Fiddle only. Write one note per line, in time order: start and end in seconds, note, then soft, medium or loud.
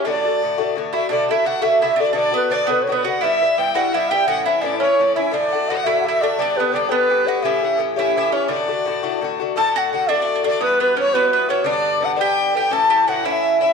0.03 0.72 D5 medium
0.93 1.09 E5 medium
1.11 1.28 D5 medium
1.28 1.47 E5 medium
1.46 1.64 F#5 medium
1.63 1.80 E5 medium
1.80 1.97 E5 medium
1.99 2.13 D5 medium
2.14 2.48 D5 medium
2.50 2.70 D5 medium
2.69 2.82 B4 medium
2.92 3.05 B4 medium
3.03 3.23 F#5 medium
3.21 3.59 E5 loud
3.58 3.76 G5 medium
3.74 3.94 F#5 medium
3.92 4.12 E5 medium
4.11 4.27 G5 medium
4.28 4.45 F#5 medium
4.46 4.67 E5 medium
4.65 4.81 D5 medium
4.82 5.03 C#5 medium
5.01 5.17 D5 medium
5.18 5.35 E5 medium
5.34 5.72 D5 medium
5.71 5.88 F#5 medium
5.87 6.06 E5 medium
6.07 6.41 E5 medium
6.40 6.60 D5 medium
6.59 6.78 B4 medium
6.76 6.91 D5 medium
6.92 7.46 B4 medium
7.45 7.66 E5 medium
7.65 7.81 F#5 medium
7.98 8.16 E5 medium
8.18 8.32 E5 medium
8.33 8.49 C#5 medium
8.49 9.18 D5 medium
9.57 9.74 A5 loud
9.75 9.90 F#5 medium
9.91 10.07 F#5 medium
10.11 10.43 D5 medium
10.48 10.62 D5 medium
10.63 10.80 B4 medium
10.81 10.96 B4 medium
10.99 11.16 C#5 medium
11.15 11.33 B4 medium
11.34 11.49 B4 medium
11.51 11.66 C#5 medium
11.68 12.01 D5 medium
12.04 12.11 F#5 medium
12.20 12.54 G5 medium
12.56 12.73 G5 medium
12.72 13.07 A5 medium
13.08 13.25 F#5 medium
13.24 13.59 E5 medium
13.60 13.73 E5 medium